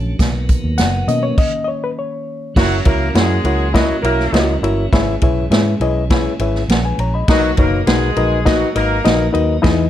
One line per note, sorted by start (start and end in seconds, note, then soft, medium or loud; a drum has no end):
0.00 0.13 A#1 medium
0.00 0.17 D3 medium
0.00 1.34 F#3 medium
0.00 0.17 A3 medium
0.00 0.17 C#4 medium
0.18 0.54 B1 loud
0.18 1.36 D#3 medium
0.18 1.36 A#3 medium
0.18 1.37 B3 medium
0.18 kick loud
0.18 snare loud
0.18 closed hi-hat medium
0.18 tambourine medium
0.49 kick medium
0.49 closed hi-hat medium
0.49 tambourine medium
0.64 0.80 D#2 medium
0.78 1.02 F#1 loud
0.78 1.09 F#5 loud
0.78 snare loud
0.78 closed hi-hat medium
0.78 tambourine loud
1.07 1.31 B2 loud
1.07 2.52 D#3 medium
1.07 2.52 A#3 medium
1.07 2.53 C#4 medium
1.07 1.24 D#5 medium
1.07 closed hi-hat medium
1.07 tambourine medium
1.23 1.38 C#5 medium
1.38 1.63 D#5 loud
1.38 kick loud
1.38 crash medium
1.64 1.83 C#5 medium
1.64 1.68 D#5 medium
1.84 1.90 B4 medium
1.99 2.53 C#5 medium
2.55 2.79 F#1 medium
2.55 7.24 E3 medium
2.55 4.89 F#3 medium
2.55 2.80 F#3 loud
2.55 4.90 A#3 medium
2.55 7.24 C#4 medium
2.55 2.78 E4 loud
2.55 2.80 F#4 loud
2.55 2.78 F#4 medium
2.55 2.79 A#4 medium
2.55 2.79 C#5 loud
2.55 2.79 E5 loud
2.55 kick loud
2.55 snare loud
2.55 crash medium
2.85 3.09 C#2 medium
2.85 3.10 A#3 loud
2.85 3.08 E4 medium
2.85 3.08 F#4 medium
2.85 3.08 A#4 medium
2.85 3.10 A#4 loud
2.85 3.08 C#5 medium
2.85 3.08 E5 loud
2.85 kick loud
2.85 ride medium
3.15 3.38 F#2 loud
3.15 3.71 G#3 loud
3.15 3.37 E4 loud
3.15 3.37 F#4 medium
3.15 3.71 G#4 loud
3.15 3.37 A#4 medium
3.15 3.38 C#5 medium
3.15 3.38 F#5 loud
3.15 snare loud
3.15 ride medium
3.44 3.91 C#2 loud
3.44 3.67 E4 medium
3.44 3.67 F#4 medium
3.44 3.67 A#4 medium
3.44 3.67 C#5 medium
3.44 3.67 F#5 medium
3.44 ride medium
3.74 3.98 F#3 medium
3.74 3.96 E4 loud
3.74 3.98 F#4 loud
3.74 3.96 F#4 loud
3.74 3.97 A#4 loud
3.74 3.97 C#5 loud
3.74 3.97 D#5 loud
3.74 kick loud
3.74 snare loud
3.74 ride medium
4.03 4.27 B1 medium
4.03 4.59 A#3 loud
4.03 4.26 E4 medium
4.03 4.26 F#4 medium
4.03 4.59 A#4 loud
4.03 4.26 A#4 medium
4.03 4.27 C#5 medium
4.03 4.26 E5 loud
4.03 ride medium
4.20 snare soft
4.32 4.56 C#2 loud
4.32 4.55 E4 medium
4.32 4.55 F#4 medium
4.32 4.55 A#4 medium
4.32 4.55 C#5 medium
4.32 4.56 D#5 loud
4.32 snare loud
4.32 ride medium
4.62 4.85 G1 medium
4.62 4.85 E4 medium
4.62 4.85 F#4 medium
4.62 4.85 A#4 medium
4.62 4.85 C#5 medium
4.62 4.85 E5 loud
4.62 ride medium
4.93 5.16 G#1 loud
4.93 5.77 G#2 medium
4.93 7.26 G#3 medium
4.93 5.15 E4 loud
4.93 5.15 G#4 loud
4.93 5.15 B4 loud
4.93 5.15 C#5 loud
4.93 5.15 E5 loud
4.93 kick loud
4.93 snare loud
4.93 ride medium
5.21 5.45 B1 medium
5.21 5.44 E4 medium
5.21 5.44 G#4 medium
5.21 5.44 B4 medium
5.21 5.45 C#5 medium
5.21 5.45 E5 medium
5.21 kick loud
5.21 ride medium
5.50 5.74 G#2 loud
5.50 5.73 E4 medium
5.50 5.73 G#4 medium
5.50 5.74 B4 medium
5.50 5.74 C#5 medium
5.50 5.74 E5 loud
5.50 snare loud
5.50 ride medium
5.80 6.27 B1 medium
5.80 6.03 E4 medium
5.80 6.03 G#4 medium
5.80 6.03 B4 medium
5.80 6.03 C#5 medium
5.80 6.03 D#5 loud
5.80 ride medium
6.10 6.33 E4 loud
6.10 6.33 G#4 loud
6.10 6.33 B4 loud
6.10 6.33 C#5 loud
6.10 6.33 E5 loud
6.10 kick loud
6.10 snare loud
6.10 ride medium
6.39 6.63 G#1 medium
6.39 6.62 E4 medium
6.39 6.62 G#4 medium
6.39 6.62 B4 medium
6.39 6.62 C#5 medium
6.39 6.63 E5 loud
6.39 ride medium
6.55 snare soft
6.68 6.92 A#1 loud
6.68 6.85 A#4 medium
6.68 6.84 F#5 medium
6.68 snare loud
6.68 ride medium
6.85 6.99 B4 medium
6.85 6.99 G#5 medium
6.98 7.22 A#1 medium
6.98 7.14 C#5 medium
6.98 7.13 A#5 medium
6.98 ride medium
7.14 7.29 D#5 medium
7.14 7.42 B5 medium
7.28 7.51 B1 loud
7.28 8.14 B2 medium
7.28 9.62 F#3 medium
7.28 7.52 F#3 loud
7.28 9.62 A#3 medium
7.28 9.90 D#4 medium
7.28 7.51 D#4 loud
7.28 7.52 F#4 loud
7.28 7.51 F#4 loud
7.28 7.51 A#4 loud
7.28 7.51 B4 loud
7.28 7.51 D#5 loud
7.28 kick loud
7.28 snare loud
7.28 ride medium
7.57 7.81 F#1 loud
7.57 7.81 A#3 medium
7.57 7.80 D#4 medium
7.57 7.80 F#4 medium
7.57 7.81 A#4 loud
7.57 7.80 A#4 medium
7.57 7.80 B4 medium
7.57 7.80 C#5 loud
7.57 kick loud
7.57 ride medium
7.86 8.10 B1 medium
7.86 8.42 G#3 loud
7.86 8.09 D#4 medium
7.86 8.09 F#4 medium
7.86 8.42 G#4 loud
7.86 8.09 A#4 medium
7.86 8.09 B4 medium
7.86 8.10 F#5 loud
7.86 snare loud
7.86 ride medium
8.16 8.63 A#1 medium
8.16 8.39 D#4 medium
8.16 8.39 F#4 medium
8.16 8.39 A#4 medium
8.16 8.39 B4 medium
8.16 8.39 D#5 loud
8.16 ride medium
8.45 8.70 F#3 loud
8.45 8.68 D#4 loud
8.45 8.68 F#4 loud
8.45 8.70 F#4 loud
8.45 8.68 A#4 medium
8.45 8.68 B4 loud
8.45 8.68 D#5 loud
8.45 kick loud
8.45 snare loud
8.45 ride medium
8.75 8.99 G#1 medium
8.75 9.31 A#3 loud
8.75 8.97 D#4 medium
8.75 8.98 F#4 medium
8.75 8.98 A#4 medium
8.75 9.31 A#4 loud
8.75 8.98 B4 medium
8.75 8.98 D#5 loud
8.75 ride medium
9.04 9.28 A#1 loud
9.04 9.27 D#4 loud
9.04 9.27 F#4 medium
9.04 9.27 A#4 medium
9.04 9.27 B4 medium
9.04 9.27 D#5 loud
9.04 snare loud
9.04 ride medium
9.33 9.58 D#2 medium
9.33 9.56 D#4 loud
9.33 9.56 F#4 medium
9.33 9.56 A#4 medium
9.33 9.56 B4 medium
9.33 9.56 D#5 loud
9.33 ride medium
9.62 9.87 E2 loud
9.62 9.90 E3 medium
9.62 9.90 G#3 medium
9.62 9.85 D#4 loud
9.62 9.85 E4 loud
9.62 9.85 G#4 loud
9.62 9.85 B4 loud
9.62 9.85 D#5 loud
9.62 kick loud
9.62 snare loud
9.62 ride medium